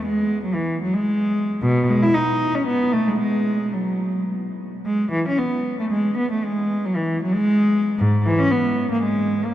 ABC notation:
X:1
M:3/4
L:1/16
Q:1/4=114
K:G#phr
V:1 name="Cello" clef=bass
G,3 F, E,2 F, G,4- G, | B,,2 G, E D3 C B,2 A, G, | G,4 F,4 z4 | G,2 E, C B,3 A, G,2 B, A, |
G,3 F, E,2 F, G,4- G, | [K:G#m] G,,2 E, C B,3 A, G,3 A, |]